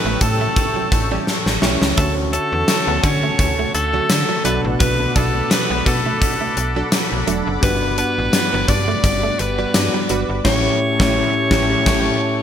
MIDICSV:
0, 0, Header, 1, 10, 480
1, 0, Start_track
1, 0, Key_signature, 2, "major"
1, 0, Tempo, 705882
1, 1348, Time_signature, 4, 2, 24, 8
1, 8449, End_track
2, 0, Start_track
2, 0, Title_t, "Analog synth pad"
2, 0, Program_c, 0, 89
2, 0, Note_on_c, 0, 69, 76
2, 0, Note_on_c, 0, 79, 71
2, 0, Note_on_c, 0, 85, 67
2, 0, Note_on_c, 0, 88, 86
2, 1329, Note_off_c, 0, 69, 0
2, 1330, Note_off_c, 0, 79, 0
2, 1330, Note_off_c, 0, 88, 0
2, 1350, Note_on_c, 0, 78, 72
2, 1351, Note_on_c, 0, 69, 77
2, 1353, Note_on_c, 0, 81, 81
2, 3000, Note_off_c, 0, 85, 0
2, 3013, Note_off_c, 0, 81, 0
2, 3028, Note_on_c, 0, 86, 83
2, 3029, Note_on_c, 0, 83, 74
2, 5162, Note_off_c, 0, 69, 0
2, 5189, Note_on_c, 0, 55, 77
2, 7081, Note_off_c, 0, 78, 0
2, 7081, Note_off_c, 0, 83, 0
2, 7081, Note_off_c, 0, 86, 0
2, 7089, Note_off_c, 0, 55, 0
2, 7104, Note_on_c, 0, 76, 73
2, 7104, Note_on_c, 0, 81, 71
2, 7105, Note_on_c, 0, 85, 84
2, 7106, Note_on_c, 0, 67, 78
2, 8449, Note_off_c, 0, 67, 0
2, 8449, Note_off_c, 0, 76, 0
2, 8449, Note_off_c, 0, 81, 0
2, 8449, Note_off_c, 0, 85, 0
2, 8449, End_track
3, 0, Start_track
3, 0, Title_t, "Alto saxophone"
3, 0, Program_c, 1, 65
3, 0, Note_on_c, 1, 71, 93
3, 143, Note_on_c, 1, 69, 85
3, 153, Note_off_c, 1, 71, 0
3, 1105, Note_off_c, 1, 69, 0
3, 1344, Note_on_c, 1, 69, 93
3, 1453, Note_off_c, 1, 69, 0
3, 1584, Note_on_c, 1, 69, 101
3, 2038, Note_off_c, 1, 69, 0
3, 2065, Note_on_c, 1, 73, 102
3, 2519, Note_off_c, 1, 73, 0
3, 2547, Note_on_c, 1, 69, 100
3, 3000, Note_off_c, 1, 69, 0
3, 3025, Note_on_c, 1, 71, 95
3, 3134, Note_off_c, 1, 71, 0
3, 3261, Note_on_c, 1, 71, 106
3, 3504, Note_on_c, 1, 69, 89
3, 3515, Note_off_c, 1, 71, 0
3, 3745, Note_on_c, 1, 71, 97
3, 3755, Note_off_c, 1, 69, 0
3, 3983, Note_on_c, 1, 69, 83
3, 3994, Note_off_c, 1, 71, 0
3, 4945, Note_off_c, 1, 69, 0
3, 5188, Note_on_c, 1, 71, 96
3, 5411, Note_off_c, 1, 71, 0
3, 5429, Note_on_c, 1, 71, 101
3, 5908, Note_on_c, 1, 74, 117
3, 5918, Note_off_c, 1, 71, 0
3, 6387, Note_on_c, 1, 71, 95
3, 6397, Note_off_c, 1, 74, 0
3, 6867, Note_off_c, 1, 71, 0
3, 7106, Note_on_c, 1, 73, 127
3, 8449, Note_off_c, 1, 73, 0
3, 8449, End_track
4, 0, Start_track
4, 0, Title_t, "Analog polysynth"
4, 0, Program_c, 2, 90
4, 756, Note_on_c, 2, 52, 86
4, 756, Note_on_c, 2, 67, 94
4, 757, Note_on_c, 2, 61, 84
4, 849, Note_off_c, 2, 52, 0
4, 850, Note_off_c, 2, 61, 0
4, 850, Note_off_c, 2, 67, 0
4, 1106, Note_on_c, 2, 52, 96
4, 1107, Note_on_c, 2, 67, 105
4, 1108, Note_on_c, 2, 61, 95
4, 1311, Note_off_c, 2, 52, 0
4, 1311, Note_off_c, 2, 67, 0
4, 1312, Note_off_c, 2, 61, 0
4, 2674, Note_on_c, 2, 66, 93
4, 2675, Note_on_c, 2, 50, 86
4, 2676, Note_on_c, 2, 61, 82
4, 2768, Note_off_c, 2, 66, 0
4, 2769, Note_off_c, 2, 50, 0
4, 2769, Note_off_c, 2, 61, 0
4, 3022, Note_on_c, 2, 54, 102
4, 3022, Note_on_c, 2, 69, 114
4, 3024, Note_on_c, 2, 62, 103
4, 3228, Note_off_c, 2, 54, 0
4, 3229, Note_off_c, 2, 69, 0
4, 3230, Note_off_c, 2, 62, 0
4, 4598, Note_on_c, 2, 69, 93
4, 4599, Note_on_c, 2, 54, 86
4, 4599, Note_on_c, 2, 62, 88
4, 4690, Note_off_c, 2, 69, 0
4, 4691, Note_off_c, 2, 54, 0
4, 4691, Note_off_c, 2, 62, 0
4, 4945, Note_on_c, 2, 54, 105
4, 4945, Note_on_c, 2, 62, 99
4, 4945, Note_on_c, 2, 69, 112
4, 5262, Note_off_c, 2, 54, 0
4, 5262, Note_off_c, 2, 62, 0
4, 5262, Note_off_c, 2, 69, 0
4, 6515, Note_on_c, 2, 55, 85
4, 6517, Note_on_c, 2, 66, 82
4, 6517, Note_on_c, 2, 71, 97
4, 6609, Note_off_c, 2, 55, 0
4, 6610, Note_off_c, 2, 66, 0
4, 6610, Note_off_c, 2, 71, 0
4, 6865, Note_on_c, 2, 71, 118
4, 6867, Note_on_c, 2, 55, 101
4, 6868, Note_on_c, 2, 66, 103
4, 7070, Note_off_c, 2, 71, 0
4, 7071, Note_off_c, 2, 55, 0
4, 7072, Note_off_c, 2, 66, 0
4, 7104, Note_on_c, 2, 57, 102
4, 7105, Note_on_c, 2, 67, 102
4, 7105, Note_on_c, 2, 73, 98
4, 7273, Note_off_c, 2, 57, 0
4, 7273, Note_off_c, 2, 67, 0
4, 7273, Note_off_c, 2, 73, 0
4, 7480, Note_on_c, 2, 57, 106
4, 7480, Note_on_c, 2, 73, 106
4, 7481, Note_on_c, 2, 67, 110
4, 7639, Note_off_c, 2, 57, 0
4, 7639, Note_off_c, 2, 67, 0
4, 7639, Note_off_c, 2, 73, 0
4, 7826, Note_on_c, 2, 67, 100
4, 7826, Note_on_c, 2, 73, 104
4, 7827, Note_on_c, 2, 57, 104
4, 7994, Note_off_c, 2, 57, 0
4, 7994, Note_off_c, 2, 67, 0
4, 7994, Note_off_c, 2, 73, 0
4, 8068, Note_on_c, 2, 67, 109
4, 8069, Note_on_c, 2, 73, 107
4, 8070, Note_on_c, 2, 57, 106
4, 8235, Note_off_c, 2, 67, 0
4, 8236, Note_off_c, 2, 57, 0
4, 8236, Note_off_c, 2, 73, 0
4, 8449, End_track
5, 0, Start_track
5, 0, Title_t, "Synth keys"
5, 0, Program_c, 3, 88
5, 0, Control_c, 3, 64, 127
5, 0, Note_on_c, 3, 45, 61
5, 0, Note_on_c, 3, 57, 64
5, 0, Note_on_c, 3, 61, 61
5, 0, Note_on_c, 3, 64, 63
5, 0, Note_on_c, 3, 67, 63
5, 0, Note_on_c, 3, 73, 76
5, 118, Note_off_c, 3, 45, 0
5, 1073, Note_off_c, 3, 57, 0
5, 1075, Note_off_c, 3, 61, 0
5, 1077, Note_off_c, 3, 64, 0
5, 1079, Note_off_c, 3, 67, 0
5, 1081, Note_off_c, 3, 73, 0
5, 1101, Note_on_c, 3, 57, 58
5, 1103, Note_on_c, 3, 61, 57
5, 1104, Note_on_c, 3, 64, 55
5, 1108, Note_on_c, 3, 67, 53
5, 1108, Note_on_c, 3, 73, 64
5, 1326, Note_off_c, 3, 57, 0
5, 1330, Note_off_c, 3, 61, 0
5, 1334, Note_on_c, 3, 57, 64
5, 1338, Note_on_c, 3, 61, 62
5, 1342, Note_off_c, 3, 73, 0
5, 1344, Note_on_c, 3, 50, 62
5, 1346, Note_off_c, 3, 64, 0
5, 1347, Note_on_c, 3, 66, 63
5, 1348, Note_off_c, 3, 67, 0
5, 1351, Note_on_c, 3, 73, 69
5, 1355, Control_c, 3, 64, 0
5, 1468, Control_c, 3, 64, 127
5, 2039, Note_off_c, 3, 50, 0
5, 2993, Note_off_c, 3, 57, 0
5, 2996, Note_off_c, 3, 61, 0
5, 3000, Note_off_c, 3, 66, 0
5, 3002, Note_off_c, 3, 73, 0
5, 3021, Note_on_c, 3, 57, 68
5, 3028, Note_on_c, 3, 59, 63
5, 3030, Note_on_c, 3, 47, 65
5, 3030, Note_on_c, 3, 62, 59
5, 3035, Note_on_c, 3, 66, 64
5, 3037, Note_on_c, 3, 71, 77
5, 3038, Control_c, 3, 64, 0
5, 3142, Control_c, 3, 64, 127
5, 3722, Note_off_c, 3, 47, 0
5, 4917, Note_off_c, 3, 57, 0
5, 4920, Note_off_c, 3, 59, 0
5, 4921, Note_off_c, 3, 62, 0
5, 4924, Note_off_c, 3, 66, 0
5, 4925, Note_off_c, 3, 71, 0
5, 5174, Note_on_c, 3, 55, 65
5, 5179, Note_on_c, 3, 59, 65
5, 5184, Note_on_c, 3, 43, 66
5, 5184, Note_on_c, 3, 62, 58
5, 5187, Note_on_c, 3, 66, 61
5, 5191, Note_on_c, 3, 71, 77
5, 5198, Control_c, 3, 64, 0
5, 5308, Control_c, 3, 64, 127
5, 5878, Note_off_c, 3, 43, 0
5, 6593, Note_off_c, 3, 55, 0
5, 6596, Note_off_c, 3, 59, 0
5, 6599, Note_off_c, 3, 62, 0
5, 6600, Note_off_c, 3, 66, 0
5, 6602, Note_off_c, 3, 71, 0
5, 6620, Note_on_c, 3, 55, 54
5, 6625, Note_on_c, 3, 59, 44
5, 6627, Note_on_c, 3, 62, 45
5, 6627, Note_on_c, 3, 66, 46
5, 6629, Note_on_c, 3, 74, 56
5, 7102, Note_on_c, 3, 57, 98
5, 7104, Note_off_c, 3, 55, 0
5, 7105, Note_on_c, 3, 61, 100
5, 7106, Note_off_c, 3, 59, 0
5, 7107, Note_off_c, 3, 62, 0
5, 7107, Note_off_c, 3, 66, 0
5, 7108, Note_off_c, 3, 74, 0
5, 7108, Note_on_c, 3, 64, 101
5, 7109, Note_on_c, 3, 45, 104
5, 7112, Note_on_c, 3, 67, 101
5, 7115, Note_on_c, 3, 73, 99
5, 7116, Control_c, 3, 64, 0
5, 7237, Control_c, 3, 64, 127
5, 7271, Note_off_c, 3, 57, 0
5, 7273, Note_off_c, 3, 61, 0
5, 7275, Note_off_c, 3, 64, 0
5, 7276, Note_off_c, 3, 45, 0
5, 7277, Note_off_c, 3, 67, 0
5, 7279, Note_off_c, 3, 73, 0
5, 7472, Note_on_c, 3, 57, 99
5, 7479, Note_on_c, 3, 61, 97
5, 7480, Note_on_c, 3, 45, 101
5, 7482, Note_on_c, 3, 64, 103
5, 7485, Note_on_c, 3, 67, 96
5, 7489, Note_on_c, 3, 73, 106
5, 7635, Note_off_c, 3, 57, 0
5, 7638, Note_off_c, 3, 61, 0
5, 7639, Note_off_c, 3, 45, 0
5, 7640, Note_off_c, 3, 64, 0
5, 7642, Note_off_c, 3, 67, 0
5, 7644, Note_off_c, 3, 73, 0
5, 7823, Note_on_c, 3, 57, 103
5, 7824, Note_on_c, 3, 61, 102
5, 7829, Note_on_c, 3, 64, 102
5, 7831, Note_on_c, 3, 45, 102
5, 7833, Note_on_c, 3, 67, 98
5, 7839, Note_on_c, 3, 73, 102
5, 7992, Note_off_c, 3, 57, 0
5, 7993, Note_off_c, 3, 61, 0
5, 7996, Note_off_c, 3, 64, 0
5, 7997, Note_off_c, 3, 45, 0
5, 7998, Note_off_c, 3, 67, 0
5, 8001, Note_off_c, 3, 73, 0
5, 8062, Note_on_c, 3, 57, 99
5, 8065, Note_on_c, 3, 61, 90
5, 8067, Note_on_c, 3, 64, 99
5, 8071, Note_on_c, 3, 45, 92
5, 8075, Note_on_c, 3, 67, 99
5, 8076, Note_on_c, 3, 73, 94
5, 8232, Note_off_c, 3, 57, 0
5, 8234, Note_off_c, 3, 61, 0
5, 8234, Note_off_c, 3, 64, 0
5, 8237, Note_off_c, 3, 45, 0
5, 8239, Note_off_c, 3, 67, 0
5, 8240, Note_off_c, 3, 73, 0
5, 8449, End_track
6, 0, Start_track
6, 0, Title_t, "Clean electric guitar"
6, 0, Program_c, 4, 27
6, 0, Note_on_c, 4, 59, 77
6, 144, Note_off_c, 4, 59, 0
6, 144, Note_on_c, 4, 57, 72
6, 1106, Note_off_c, 4, 57, 0
6, 1346, Note_on_c, 4, 57, 79
6, 1411, Note_off_c, 4, 57, 0
6, 1585, Note_on_c, 4, 57, 77
6, 2039, Note_off_c, 4, 57, 0
6, 2059, Note_on_c, 4, 61, 96
6, 2516, Note_off_c, 4, 61, 0
6, 2548, Note_on_c, 4, 57, 78
6, 3000, Note_off_c, 4, 57, 0
6, 3028, Note_on_c, 4, 59, 86
6, 3093, Note_off_c, 4, 59, 0
6, 3265, Note_on_c, 4, 59, 88
6, 3502, Note_off_c, 4, 59, 0
6, 3502, Note_on_c, 4, 57, 76
6, 3739, Note_off_c, 4, 57, 0
6, 3739, Note_on_c, 4, 59, 82
6, 3985, Note_off_c, 4, 59, 0
6, 3985, Note_on_c, 4, 57, 71
6, 4946, Note_off_c, 4, 57, 0
6, 5195, Note_on_c, 4, 59, 82
6, 5415, Note_off_c, 4, 59, 0
6, 5433, Note_on_c, 4, 59, 81
6, 5883, Note_off_c, 4, 59, 0
6, 5912, Note_on_c, 4, 62, 105
6, 6389, Note_off_c, 4, 62, 0
6, 6389, Note_on_c, 4, 59, 73
6, 6868, Note_off_c, 4, 59, 0
6, 8449, End_track
7, 0, Start_track
7, 0, Title_t, "Clean electric guitar"
7, 0, Program_c, 5, 27
7, 40, Note_on_c, 5, 57, 78
7, 126, Note_off_c, 5, 57, 0
7, 280, Note_on_c, 5, 57, 77
7, 366, Note_off_c, 5, 57, 0
7, 519, Note_on_c, 5, 54, 75
7, 605, Note_off_c, 5, 54, 0
7, 760, Note_on_c, 5, 55, 77
7, 846, Note_off_c, 5, 55, 0
7, 1105, Note_on_c, 5, 57, 82
7, 1212, Note_off_c, 5, 57, 0
7, 1347, Note_on_c, 5, 62, 88
7, 1452, Note_off_c, 5, 62, 0
7, 1588, Note_on_c, 5, 61, 70
7, 1693, Note_off_c, 5, 61, 0
7, 1959, Note_on_c, 5, 59, 78
7, 2045, Note_off_c, 5, 59, 0
7, 2199, Note_on_c, 5, 57, 78
7, 2285, Note_off_c, 5, 57, 0
7, 2442, Note_on_c, 5, 57, 77
7, 2527, Note_off_c, 5, 57, 0
7, 2679, Note_on_c, 5, 54, 79
7, 2765, Note_off_c, 5, 54, 0
7, 2917, Note_on_c, 5, 54, 77
7, 3004, Note_off_c, 5, 54, 0
7, 3025, Note_on_c, 5, 57, 72
7, 3131, Note_off_c, 5, 57, 0
7, 3267, Note_on_c, 5, 59, 81
7, 3372, Note_off_c, 5, 59, 0
7, 3509, Note_on_c, 5, 62, 84
7, 3614, Note_off_c, 5, 62, 0
7, 3879, Note_on_c, 5, 59, 80
7, 3966, Note_off_c, 5, 59, 0
7, 4122, Note_on_c, 5, 57, 75
7, 4207, Note_off_c, 5, 57, 0
7, 4358, Note_on_c, 5, 57, 71
7, 4445, Note_off_c, 5, 57, 0
7, 4600, Note_on_c, 5, 54, 75
7, 4686, Note_off_c, 5, 54, 0
7, 4948, Note_on_c, 5, 57, 81
7, 5053, Note_off_c, 5, 57, 0
7, 5186, Note_on_c, 5, 55, 87
7, 5292, Note_off_c, 5, 55, 0
7, 5427, Note_on_c, 5, 62, 74
7, 5532, Note_off_c, 5, 62, 0
7, 5800, Note_on_c, 5, 59, 78
7, 5886, Note_off_c, 5, 59, 0
7, 6038, Note_on_c, 5, 57, 85
7, 6125, Note_off_c, 5, 57, 0
7, 6279, Note_on_c, 5, 57, 78
7, 6366, Note_off_c, 5, 57, 0
7, 6519, Note_on_c, 5, 55, 80
7, 6605, Note_off_c, 5, 55, 0
7, 6761, Note_on_c, 5, 55, 80
7, 6847, Note_off_c, 5, 55, 0
7, 6868, Note_on_c, 5, 54, 72
7, 6973, Note_off_c, 5, 54, 0
7, 8449, End_track
8, 0, Start_track
8, 0, Title_t, "FM bass"
8, 0, Program_c, 6, 39
8, 34, Note_on_c, 6, 33, 95
8, 117, Note_off_c, 6, 33, 0
8, 144, Note_on_c, 6, 45, 89
8, 325, Note_off_c, 6, 45, 0
8, 624, Note_on_c, 6, 33, 97
8, 806, Note_off_c, 6, 33, 0
8, 995, Note_on_c, 6, 33, 97
8, 1078, Note_off_c, 6, 33, 0
8, 1103, Note_on_c, 6, 35, 94
8, 1204, Note_off_c, 6, 35, 0
8, 1234, Note_on_c, 6, 37, 93
8, 1317, Note_off_c, 6, 37, 0
8, 1345, Note_on_c, 6, 38, 113
8, 1625, Note_off_c, 6, 38, 0
8, 1717, Note_on_c, 6, 40, 91
8, 1799, Note_off_c, 6, 40, 0
8, 1955, Note_on_c, 6, 38, 98
8, 2038, Note_off_c, 6, 38, 0
8, 2065, Note_on_c, 6, 50, 97
8, 2246, Note_off_c, 6, 50, 0
8, 2306, Note_on_c, 6, 38, 92
8, 2486, Note_off_c, 6, 38, 0
8, 2547, Note_on_c, 6, 38, 95
8, 2727, Note_off_c, 6, 38, 0
8, 2788, Note_on_c, 6, 50, 106
8, 2887, Note_off_c, 6, 50, 0
8, 3026, Note_on_c, 6, 35, 104
8, 3125, Note_off_c, 6, 35, 0
8, 3158, Note_on_c, 6, 33, 101
8, 3239, Note_off_c, 6, 33, 0
8, 3265, Note_on_c, 6, 35, 102
8, 3446, Note_off_c, 6, 35, 0
8, 3508, Note_on_c, 6, 35, 115
8, 3688, Note_off_c, 6, 35, 0
8, 3879, Note_on_c, 6, 35, 92
8, 3960, Note_off_c, 6, 35, 0
8, 3988, Note_on_c, 6, 47, 99
8, 4168, Note_off_c, 6, 47, 0
8, 4468, Note_on_c, 6, 35, 90
8, 4648, Note_off_c, 6, 35, 0
8, 4843, Note_on_c, 6, 35, 85
8, 4923, Note_off_c, 6, 35, 0
8, 4949, Note_on_c, 6, 28, 89
8, 5047, Note_off_c, 6, 28, 0
8, 5081, Note_on_c, 6, 30, 95
8, 5161, Note_off_c, 6, 30, 0
8, 5188, Note_on_c, 6, 31, 108
8, 5467, Note_off_c, 6, 31, 0
8, 5565, Note_on_c, 6, 33, 92
8, 5644, Note_off_c, 6, 33, 0
8, 5806, Note_on_c, 6, 31, 100
8, 5884, Note_off_c, 6, 31, 0
8, 5906, Note_on_c, 6, 43, 98
8, 6086, Note_off_c, 6, 43, 0
8, 6146, Note_on_c, 6, 31, 100
8, 6327, Note_off_c, 6, 31, 0
8, 6392, Note_on_c, 6, 31, 98
8, 6570, Note_off_c, 6, 31, 0
8, 6628, Note_on_c, 6, 43, 95
8, 6727, Note_off_c, 6, 43, 0
8, 6869, Note_on_c, 6, 31, 91
8, 6967, Note_off_c, 6, 31, 0
8, 7000, Note_on_c, 6, 31, 91
8, 7081, Note_off_c, 6, 31, 0
8, 7106, Note_on_c, 6, 33, 111
8, 7274, Note_off_c, 6, 33, 0
8, 7480, Note_on_c, 6, 33, 106
8, 7639, Note_off_c, 6, 33, 0
8, 7828, Note_on_c, 6, 33, 94
8, 7995, Note_off_c, 6, 33, 0
8, 8066, Note_on_c, 6, 33, 104
8, 8234, Note_off_c, 6, 33, 0
8, 8449, End_track
9, 0, Start_track
9, 0, Title_t, "Muted clean electric guitar strokes"
9, 151, Note_on_c, 9, 29, 48
9, 219, Note_off_c, 9, 29, 0
9, 626, Note_on_c, 9, 29, 48
9, 694, Note_off_c, 9, 29, 0
9, 1483, Note_on_c, 9, 29, 46
9, 1551, Note_off_c, 9, 29, 0
9, 2070, Note_on_c, 9, 29, 45
9, 2138, Note_off_c, 9, 29, 0
9, 2549, Note_on_c, 9, 29, 49
9, 2617, Note_off_c, 9, 29, 0
9, 2787, Note_on_c, 9, 29, 46
9, 2855, Note_off_c, 9, 29, 0
9, 3401, Note_on_c, 9, 29, 49
9, 3469, Note_off_c, 9, 29, 0
9, 3989, Note_on_c, 9, 29, 46
9, 4057, Note_off_c, 9, 29, 0
9, 4469, Note_on_c, 9, 29, 48
9, 4537, Note_off_c, 9, 29, 0
9, 5322, Note_on_c, 9, 29, 46
9, 5390, Note_off_c, 9, 29, 0
9, 5907, Note_on_c, 9, 29, 47
9, 5975, Note_off_c, 9, 29, 0
9, 6388, Note_on_c, 9, 29, 49
9, 6456, Note_off_c, 9, 29, 0
9, 6628, Note_on_c, 9, 29, 45
9, 6696, Note_off_c, 9, 29, 0
9, 8449, End_track
10, 0, Start_track
10, 0, Title_t, "Drums"
10, 142, Note_on_c, 9, 42, 82
10, 144, Note_on_c, 9, 36, 91
10, 210, Note_off_c, 9, 42, 0
10, 212, Note_off_c, 9, 36, 0
10, 383, Note_on_c, 9, 42, 76
10, 384, Note_on_c, 9, 36, 94
10, 451, Note_off_c, 9, 42, 0
10, 452, Note_off_c, 9, 36, 0
10, 625, Note_on_c, 9, 36, 98
10, 626, Note_on_c, 9, 42, 74
10, 693, Note_off_c, 9, 36, 0
10, 694, Note_off_c, 9, 42, 0
10, 866, Note_on_c, 9, 38, 60
10, 934, Note_off_c, 9, 38, 0
10, 995, Note_on_c, 9, 38, 63
10, 1063, Note_off_c, 9, 38, 0
10, 1102, Note_on_c, 9, 38, 96
10, 1170, Note_off_c, 9, 38, 0
10, 1235, Note_on_c, 9, 38, 90
10, 1303, Note_off_c, 9, 38, 0
10, 1343, Note_on_c, 9, 42, 90
10, 1345, Note_on_c, 9, 36, 127
10, 1411, Note_off_c, 9, 42, 0
10, 1413, Note_off_c, 9, 36, 0
10, 1585, Note_on_c, 9, 42, 72
10, 1653, Note_off_c, 9, 42, 0
10, 1822, Note_on_c, 9, 38, 111
10, 1823, Note_on_c, 9, 54, 62
10, 1824, Note_on_c, 9, 42, 97
10, 1890, Note_off_c, 9, 38, 0
10, 1891, Note_off_c, 9, 54, 0
10, 1892, Note_off_c, 9, 42, 0
10, 2063, Note_on_c, 9, 42, 77
10, 2064, Note_on_c, 9, 36, 91
10, 2131, Note_off_c, 9, 42, 0
10, 2132, Note_off_c, 9, 36, 0
10, 2305, Note_on_c, 9, 36, 93
10, 2307, Note_on_c, 9, 42, 78
10, 2373, Note_off_c, 9, 36, 0
10, 2375, Note_off_c, 9, 42, 0
10, 2547, Note_on_c, 9, 42, 75
10, 2615, Note_off_c, 9, 42, 0
10, 2785, Note_on_c, 9, 54, 70
10, 2786, Note_on_c, 9, 38, 125
10, 2786, Note_on_c, 9, 42, 96
10, 2853, Note_off_c, 9, 54, 0
10, 2854, Note_off_c, 9, 38, 0
10, 2854, Note_off_c, 9, 42, 0
10, 3025, Note_on_c, 9, 42, 81
10, 3093, Note_off_c, 9, 42, 0
10, 3265, Note_on_c, 9, 42, 87
10, 3267, Note_on_c, 9, 36, 117
10, 3333, Note_off_c, 9, 42, 0
10, 3335, Note_off_c, 9, 36, 0
10, 3507, Note_on_c, 9, 42, 76
10, 3508, Note_on_c, 9, 36, 98
10, 3575, Note_off_c, 9, 42, 0
10, 3576, Note_off_c, 9, 36, 0
10, 3746, Note_on_c, 9, 38, 116
10, 3747, Note_on_c, 9, 54, 65
10, 3748, Note_on_c, 9, 42, 97
10, 3814, Note_off_c, 9, 38, 0
10, 3815, Note_off_c, 9, 54, 0
10, 3816, Note_off_c, 9, 42, 0
10, 3987, Note_on_c, 9, 36, 91
10, 3987, Note_on_c, 9, 42, 85
10, 4055, Note_off_c, 9, 36, 0
10, 4055, Note_off_c, 9, 42, 0
10, 4227, Note_on_c, 9, 36, 97
10, 4228, Note_on_c, 9, 42, 78
10, 4295, Note_off_c, 9, 36, 0
10, 4296, Note_off_c, 9, 42, 0
10, 4467, Note_on_c, 9, 42, 75
10, 4535, Note_off_c, 9, 42, 0
10, 4705, Note_on_c, 9, 54, 71
10, 4706, Note_on_c, 9, 38, 117
10, 4707, Note_on_c, 9, 42, 94
10, 4773, Note_off_c, 9, 54, 0
10, 4774, Note_off_c, 9, 38, 0
10, 4775, Note_off_c, 9, 42, 0
10, 4947, Note_on_c, 9, 42, 76
10, 5015, Note_off_c, 9, 42, 0
10, 5187, Note_on_c, 9, 36, 126
10, 5187, Note_on_c, 9, 42, 93
10, 5255, Note_off_c, 9, 36, 0
10, 5255, Note_off_c, 9, 42, 0
10, 5425, Note_on_c, 9, 42, 75
10, 5493, Note_off_c, 9, 42, 0
10, 5665, Note_on_c, 9, 38, 120
10, 5665, Note_on_c, 9, 54, 63
10, 5666, Note_on_c, 9, 42, 104
10, 5733, Note_off_c, 9, 38, 0
10, 5733, Note_off_c, 9, 54, 0
10, 5734, Note_off_c, 9, 42, 0
10, 5905, Note_on_c, 9, 42, 86
10, 5906, Note_on_c, 9, 36, 95
10, 5973, Note_off_c, 9, 42, 0
10, 5974, Note_off_c, 9, 36, 0
10, 6146, Note_on_c, 9, 36, 96
10, 6148, Note_on_c, 9, 42, 78
10, 6214, Note_off_c, 9, 36, 0
10, 6216, Note_off_c, 9, 42, 0
10, 6387, Note_on_c, 9, 42, 71
10, 6455, Note_off_c, 9, 42, 0
10, 6625, Note_on_c, 9, 38, 119
10, 6625, Note_on_c, 9, 54, 75
10, 6626, Note_on_c, 9, 42, 95
10, 6693, Note_off_c, 9, 38, 0
10, 6693, Note_off_c, 9, 54, 0
10, 6694, Note_off_c, 9, 42, 0
10, 6864, Note_on_c, 9, 42, 76
10, 6932, Note_off_c, 9, 42, 0
10, 7104, Note_on_c, 9, 38, 114
10, 7104, Note_on_c, 9, 49, 88
10, 7106, Note_on_c, 9, 36, 110
10, 7172, Note_off_c, 9, 38, 0
10, 7172, Note_off_c, 9, 49, 0
10, 7174, Note_off_c, 9, 36, 0
10, 7479, Note_on_c, 9, 36, 109
10, 7480, Note_on_c, 9, 38, 104
10, 7547, Note_off_c, 9, 36, 0
10, 7548, Note_off_c, 9, 38, 0
10, 7826, Note_on_c, 9, 38, 111
10, 7827, Note_on_c, 9, 36, 114
10, 7894, Note_off_c, 9, 38, 0
10, 7895, Note_off_c, 9, 36, 0
10, 8067, Note_on_c, 9, 36, 110
10, 8068, Note_on_c, 9, 38, 105
10, 8068, Note_on_c, 9, 49, 81
10, 8135, Note_off_c, 9, 36, 0
10, 8136, Note_off_c, 9, 38, 0
10, 8136, Note_off_c, 9, 49, 0
10, 8449, End_track
0, 0, End_of_file